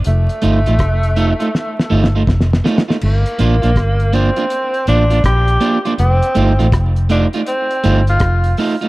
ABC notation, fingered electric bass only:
X:1
M:4/4
L:1/16
Q:"Swing 16ths" 1/4=81
K:Gm
V:1 name="Fingered electric bass" clef=bass
F,,, z G,,, A,,, F,,,3 z3 G,,,2 F,,,2 z2 | G,,, z A,,, B,,, G,,,3 z3 A,,,2 B,,,2 z2 | F,,, z G,,, A,,, F,,,3 z3 G,,,2 F,,,2 z2 |]